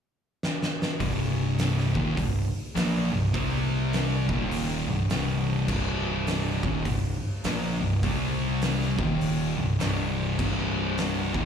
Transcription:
0.43 snare
0.63 snare
0.82 snare
0.99 C1 C2 G2 C3, kick, open hi-hat
1.59 snare, open hi-hat
1.78 snare
1.93 D#1 D#2 A#2 D#3, kick
2.16 C1 C2 G2, kick, open hi-hat
2.75 A#1 A#2 F3 A#3, snare, open hi-hat
3.11 C1 C2 G2
3.34 C2 C3 G3 C4, kick, open hi-hat
3.93 snare, open hi-hat
4.28 D#1 D#2 A#2 D#3, kick
4.51 open hi-hat
4.87 C1 C2 G2
5.10 C1 C2 G2 C3, snare, open hi-hat
5.68 C1 C2 G2 C3, kick, crash
6.27 snare, open hi-hat
6.63 D#1 D#2 A#2 D#3, kick
6.85 C1 C2 G2, kick, open hi-hat
7.44 A#1 A#2 F3 A#3, snare, open hi-hat
7.80 C1 C2 G2
8.03 C2 C3 G3 C4, kick, open hi-hat
8.62 snare, open hi-hat
8.82 snare
8.98 D#1 D#2 A#2 D#3, kick
9.21 open hi-hat
9.58 C1 C2 G2
9.80 C1 C2 G2 C3, snare, open hi-hat
10.38 C1 C2 G2 C3, kick, crash
10.98 snare, open hi-hat
11.33 D#1 D#2 A#2 D#3, kick

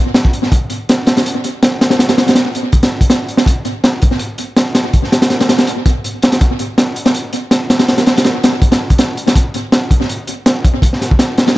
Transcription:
0.14 snare, closed hi-hat
0.25 kick
0.33 closed hi-hat
0.43 snare
0.52 kick, closed hi-hat
0.70 closed hi-hat
0.89 snare, closed hi-hat
1.07 snare, closed hi-hat
1.17 snare, closed hi-hat
1.26 closed hi-hat
1.44 closed hi-hat
1.63 snare, closed hi-hat
1.81 snare, closed hi-hat
1.90 snare, closed hi-hat
1.99 snare, closed hi-hat
2.09 snare, closed hi-hat
2.18 snare, closed hi-hat
2.28 snare, closed hi-hat
2.35 snare, closed hi-hat
2.55 closed hi-hat
2.72 kick, closed hi-hat
2.83 snare, closed hi-hat
3.01 kick, closed hi-hat
3.10 snare, closed hi-hat
3.29 closed hi-hat
3.37 snare, closed hi-hat
3.46 kick, closed hi-hat
3.65 closed hi-hat
3.84 snare, closed hi-hat
4.02 kick, closed hi-hat
4.11 snare
4.19 closed hi-hat
4.38 closed hi-hat
4.57 snare, closed hi-hat
4.75 snare, closed hi-hat
4.93 kick, closed hi-hat
5.04 snare
5.12 snare, closed hi-hat
5.22 snare, closed hi-hat
5.30 snare, closed hi-hat
5.41 snare, closed hi-hat
5.49 snare, closed hi-hat
5.58 snare, closed hi-hat
5.67 closed hi-hat
5.86 kick, closed hi-hat
6.04 closed hi-hat
6.22 snare, closed hi-hat
6.32 snare, closed hi-hat
6.41 kick, closed hi-hat
6.59 closed hi-hat
6.78 snare, closed hi-hat
6.96 closed hi-hat
7.06 snare, closed hi-hat
7.15 closed hi-hat
7.33 closed hi-hat
7.51 snare, closed hi-hat
7.70 snare, closed hi-hat
7.79 snare, closed hi-hat
7.88 snare, closed hi-hat
7.98 snare, closed hi-hat
8.06 snare, closed hi-hat
8.17 snare, closed hi-hat
8.24 snare, closed hi-hat
8.44 snare, closed hi-hat
8.62 kick, closed hi-hat
8.72 snare, closed hi-hat
8.90 kick, closed hi-hat
8.98 snare, closed hi-hat
9.17 closed hi-hat
9.27 snare, closed hi-hat
9.36 kick, closed hi-hat
9.54 closed hi-hat
9.72 snare, closed hi-hat
9.91 kick, closed hi-hat
10.01 snare
10.09 closed hi-hat
10.27 closed hi-hat
10.46 snare, closed hi-hat
10.65 kick, closed hi-hat
10.82 kick, closed hi-hat
10.93 snare
11.01 snare, closed hi-hat
11.11 kick
11.19 snare, closed hi-hat
11.38 snare, closed hi-hat
11.48 snare, closed hi-hat

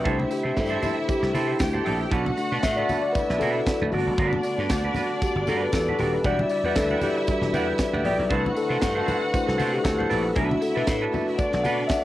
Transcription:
0.04 C2 E3 A3 C4 D4 E4 G4 A4 C5 E5, kick, closed hi-hat, muted conga
0.19 muted clean electric guitar stroke, high conga
0.30 G4, muted clean electric guitar stroke, open hi-hat, tambourine
0.43 C3 E4 A4 C5
0.55 G2, muted clean electric guitar stroke, kick, snare, closed hi-hat, tambourine
0.59 A4
0.70 E4 A4 C5, muted conga
0.81 E4 A4 C5, open hi-hat, tambourine, high conga, low conga
0.96 muted clean electric guitar stroke
1.07 G4, muted clean electric guitar stroke, kick, closed hi-hat, tambourine
1.22 C2, muted clean electric guitar stroke, snare, muted conga
1.33 C3 E4 A4 C5, open hi-hat, tambourine, high conga
1.48 E4 A4 C5
1.59 D2 G4 G5, muted clean electric guitar stroke, kick, snare, closed hi-hat, tambourine
1.73 E4 A4 C5, muted conga, low conga
1.85 A#1 E4 A4 D5, open hi-hat, low conga
2.00 muted clean electric guitar stroke
2.11 B1 D3 A3 B3 D4 F#4 A4 B4 F#5, kick, closed hi-hat, tambourine, muted conga
2.26 muted clean electric guitar stroke, muted conga, high conga
2.37 A3 D4 F#4, muted clean electric guitar stroke, open hi-hat, tambourine
2.52 B2 D4 A4 B4
2.61 A2 E5 F#5, muted clean electric guitar stroke, kick, snare, closed hi-hat, tambourine
2.76 D4 A4 B4 D5, muted conga
2.88 D4 A4 B4, open hi-hat, tambourine, high conga, low conga
3.02 D5, muted clean electric guitar stroke
3.12 E4 B4 E5, muted clean electric guitar stroke, kick, closed hi-hat, tambourine, muted conga
3.29 B1 D4 A4 B4, snare, muted conga
3.39 B2 D4 A4 B4, open hi-hat, tambourine, high conga
3.56 muted clean electric guitar stroke
3.66 muted clean electric guitar stroke, kick, snare, closed hi-hat, tambourine
3.81 D2 D4 A4 B4, muted conga, low conga
3.91 G1 G3 A3 B3 D4 F#4 D5, open hi-hat, tambourine, low conga
4.07 F#1, muted clean electric guitar stroke
4.18 G1 D4 F#4 B4, kick, closed hi-hat, muted conga
4.33 muted clean electric guitar stroke, muted conga, high conga
4.43 muted clean electric guitar stroke, open hi-hat, tambourine
4.58 G2 D4 F#4 B4
4.69 D2, muted clean electric guitar stroke, kick, snare, closed hi-hat, tambourine, muted conga
4.84 D4 F#4 B4, muted conga
4.94 D4 F#4 B4, open hi-hat, tambourine, high conga, low conga
5.10 muted clean electric guitar stroke
5.21 G4, kick, closed hi-hat, tambourine
5.35 G1, muted clean electric guitar stroke, muted conga
5.47 G2 D4 F#4 A4 B4, open hi-hat, tambourine, high conga
5.62 B4, muted clean electric guitar stroke
5.72 E2 A4, muted clean electric guitar stroke, kick, snare, closed hi-hat, tambourine, muted conga
5.88 D4 F#4 B4, low conga
5.99 D#1 D4 F#4 G4 D5, open hi-hat, tambourine, low conga
6.14 B4, muted clean electric guitar stroke
6.24 E1 E3 G3 D4 E4 F#4 G4 D5 E5 F#5, kick, closed hi-hat, tambourine, muted conga
6.39 muted clean electric guitar stroke, muted conga, high conga
6.50 D5, muted clean electric guitar stroke, open hi-hat, tambourine
6.64 E2 G4 B4 D5 F#5
6.76 D2 A4, muted clean electric guitar stroke, kick, snare, closed hi-hat, tambourine
6.91 G4 D5 F#5, muted conga
7.02 G4 D5 F#5, open hi-hat, tambourine, high conga, low conga
7.17 muted clean electric guitar stroke
7.27 G3 D4 F#4, kick, closed hi-hat, tambourine, muted conga
7.41 E1, muted clean electric guitar stroke, snare, muted conga
7.53 E2 G4 B4 D5 F#5, open hi-hat, tambourine, high conga
7.68 muted clean electric guitar stroke
7.78 muted clean electric guitar stroke, kick, snare, closed hi-hat, tambourine, muted conga
7.93 D2 G4 D5 F#5, muted conga, low conga
8.04 A#1 G4 D5 G5, open hi-hat, low conga
8.19 B1, muted clean electric guitar stroke
8.29 C2 G3 A3 C4 D4 E4 F#4 A4 B4 C5 F#5, kick, closed hi-hat
8.44 muted clean electric guitar stroke, muted conga, high conga
8.55 A4, muted clean electric guitar stroke, open hi-hat, tambourine
8.69 C3 E4 A4 C5
8.81 G2, muted clean electric guitar stroke, kick, snare, closed hi-hat, tambourine
8.95 E4 A4 C5, muted conga
9.05 E4 A4 B4 C5, open hi-hat, tambourine, high conga, low conga
9.21 muted clean electric guitar stroke
9.34 A3 D4 E4 C5, kick, closed hi-hat, tambourine, muted conga
9.46 C2 A4, muted clean electric guitar stroke, snare, muted conga
9.58 C3 E4 A4 C5, open hi-hat, tambourine, high conga
9.73 G4, muted clean electric guitar stroke
9.83 D2 A4, muted clean electric guitar stroke, kick, snare, closed hi-hat, tambourine, muted conga
9.98 E4 A4 C5, muted conga, low conga
10.09 A#1 E4 A4 B4 D5, open hi-hat, tambourine, low conga
10.24 A4, muted clean electric guitar stroke
10.35 B1 D3 A3 B3 D4 E4 F#4 A4 B4 E5, kick, closed hi-hat, muted conga
10.50 muted clean electric guitar stroke, muted conga, high conga
10.61 A4, muted clean electric guitar stroke, open hi-hat, tambourine
10.75 B2 D4 A4 B4
10.87 A2, kick, snare, closed hi-hat, tambourine
11.02 D4 A4 B4
11.13 D4 A4 B4, open hi-hat, tambourine, high conga, low conga
11.27 muted clean electric guitar stroke
11.37 D4 D5, kick, closed hi-hat, tambourine
11.52 B1, muted clean electric guitar stroke, snare, muted conga
11.64 B2 D4 A4 B4 F#5, open hi-hat, tambourine, high conga
11.80 muted clean electric guitar stroke
11.87 E5, muted clean electric guitar stroke, kick, snare, closed hi-hat, tambourine, muted conga

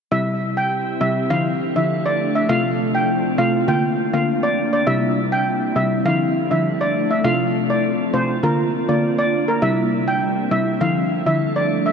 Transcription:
0.11 C3 G3 C4 E4 G4 E5
0.57 G5
1.00 C3 G3 E4 E5
1.30 D3 F3 A3 D4 E4 A4 F5
1.75 D3 F3 E4 E5
2.06 D5
2.35 E5
2.49 C3 A3 C4 F4 F5
2.95 G5
3.38 C3 A3 F4 F5
3.68 D3 A#3 D4 F4 G5
4.13 D3 A#3 F4 F5
4.43 D5
4.73 D5
4.86 C3 G3 C4 E4 E5
5.32 G5
5.76 C3 G3 E4 E5
6.05 D3 F3 A3 D4 E4 A4 F5
6.51 D3 F3 E4 E5
6.81 D5
7.11 E5
7.24 C3 A3 C4 F4 F5
7.70 D5
8.13 C3 A3 F4 C5
8.43 D3 A#3 D4 F4 A#4
8.88 D3 A#3 F4 D5
9.18 D5
9.48 A#4
9.62 C3 G3 C4 E4 E5
10.08 G5
10.51 C3 G3 E4 E5
10.80 D3 F3 A3 D4 E4 A4 F5
11.26 D3 F3 E4 E5
11.56 D5
11.86 E5

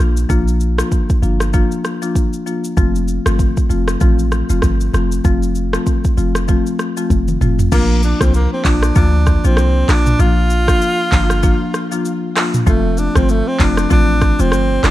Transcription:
0.00 A#1 F3 A#3 D4 F4, cross-stick
0.17 shaker
0.29 A#1 F3 A#3 D4 F4, kick, shaker
0.48 shaker
0.60 shaker
0.78 F3 A#3 D4 F4, cross-stick, shaker
0.92 kick, shaker
1.10 kick, shaker
1.22 G1 F3 A#3 D4 F4, shaker
1.40 cross-stick, shaker
1.53 F3 A#3 D4 F4, kick, shaker
1.72 shaker
1.85 cross-stick, shaker
2.02 F3 A#3 D4 F4, shaker
2.15 kick, shaker
2.33 shaker
2.46 F3 A#3 D4 F4, shaker
2.64 shaker
2.77 F1 F3 A3 C4 F4, kick, shaker
2.96 shaker
3.08 shaker
3.26 G1 F3 A3 C4 F4, cross-stick, shaker
3.39 kick, shaker
3.57 kick, shaker
3.70 F1 F3 A3 C4 F4, shaker
3.88 cross-stick, shaker
4.01 A1 F3 A3 C4 F4, kick, shaker
4.19 shaker
4.32 cross-stick, shaker
4.50 F1 F3 A3 C4 F4, shaker
4.62 G1, kick, cross-stick, shaker
4.80 shaker
4.93 F1 F3 A3 C4 F4, cross-stick, shaker
5.12 shaker
5.24 F1 F3 A3 C4 F4, kick, shaker
5.43 shaker
5.55 shaker
5.73 F3 A3 C4 F4, cross-stick, shaker
5.87 kick, shaker
6.04 kick, shaker
6.17 F1 F3 A3 C4 F4, shaker
6.35 cross-stick, shaker
6.48 F3 A3 C4 F4, kick, shaker
6.66 shaker
6.79 cross-stick, shaker
6.97 F3 A3 C4 F4, shaker
7.10 F1, kick, high tom, shaker
7.28 mid tom, shaker
7.41 F1 F3 A3 C4 F4, mid tom, shaker
7.59 floor tom, shaker
7.72 A#1 F3 A#3 D4 F4, kick, crash, shaker
8.03 D4, shaker
8.21 C2 F3 A#3 C4 D4 F4, kick, cross-stick, shaker
8.34 A#3, shaker
8.53 C4
8.65 A#1 F3 A#3 D4 F4, kick, clap, open hi-hat, shaker
8.83 cross-stick, shaker
8.95 D2 F3 A#3 D4 F4, kick, shaker
9.27 kick, cross-stick, shaker
9.44 A#1 F3 A#3 C4 D4 F4, shaker
9.57 C2, cross-stick, shaker
9.88 A#1 F3 A#3 D4 F4, cross-stick, clap, open hi-hat, shaker
10.07 mid tom, shaker
10.19 A#1 F3 A#3 D4 F4, shaker
10.50 shaker
10.68 F3 A#3 D4 F4, kick, cross-stick, shaker
10.81 shaker
11.12 G1 F3 A#3 D4 F4, kick, clap, open hi-hat, shaker
11.30 cross-stick, shaker
11.43 F3 A#3 D4 F4, kick, shaker
11.74 cross-stick, shaker
11.92 F3 A#3 D4 F4, shaker
12.05 shaker
12.36 F3 A#3 D4 F4, cross-stick, clap, open hi-hat, shaker
12.54 mid tom, shaker
12.67 F1 F3 A3 C4 F4, kick, shaker
12.98 D4, shaker
13.15 G1 F3 A3 C4 F4, kick, cross-stick, shaker
13.29 A3, shaker
13.48 C4
13.59 F1 F3 A3 C4 D4 F4, kick, clap, open hi-hat, shaker
13.77 cross-stick, shaker
13.90 A1 F3 A3 C4 D4 F4, kick, shaker
14.21 kick, cross-stick, shaker
14.39 F1 F3 A3 C4 F4, shaker
14.52 G1, cross-stick, shaker
14.83 F1 F3 A3 C4 D4 F4, cross-stick, clap, open hi-hat, shaker

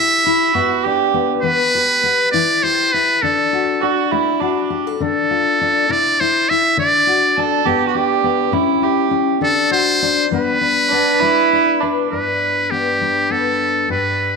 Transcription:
Already playing: C3 E4 G4 E5
0.25 E4
0.54 G2 B3 F#4
0.84 D4 G4
1.14 B3
1.42 E3 B3 B4
1.75 G4
2.03 B3
2.32 E3 E4 D5
2.63 G4 C5
2.93 E4 B4
3.22 D3 D4 A4
3.53 F#4
3.81 D4 F#4
4.11 A3 E4
4.40 D4 F#4
4.70 G4
4.87 A4
5.00 D3 D4 A4
5.31 F4
5.61 D4
5.89 C3 E4 D5
6.20 E4 C5
6.49 E4 E5
6.77 D3 D4 D5
7.07 F#4
7.36 D4 A4
7.65 G2 B3 G4
7.88 F#4
7.95 D4 G4
8.24 B3
8.52 A2 C#4 E4
8.82 E4 G4
9.11 C#4
9.41 D3 D4 A4
9.71 F#4 C5
10.02 D4
10.31 G2 G3 B3 D4 B4
10.61 D4
10.89 B3 D4
11.20 G3 E4
11.53 D4
11.80 D4 B4
12.12 G2 D4 B4
12.71 B3 D4 G4
13.01 G3
13.30 B3 A4
13.89 G2 G4 B4

